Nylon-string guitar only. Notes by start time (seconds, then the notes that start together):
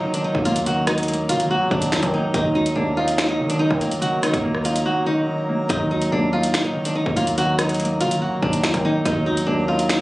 0.14 D4
0.24 D#4
0.45 F4
0.66 F#4
0.87 D#4
1.29 F4
1.51 F#4
1.72 D4
2.14 D#4
2.34 D#4
2.55 D#4
2.76 D4
2.97 F4
3.29 D#4
3.50 D4
3.59 D#4
3.81 F4
4.02 F#4
4.23 D#4
4.65 F4
4.86 F#4
5.06 D#4
5.69 D#4
5.91 D#4
6.12 D4
6.33 F4
6.64 D#4
6.86 D4
6.95 D#4
7.16 F4
7.38 F#4
7.58 D#4
8.01 F4
8.22 F#4
8.43 D4
8.85 D#4
9.05 D#4
9.26 D#4
9.46 D4
9.68 F4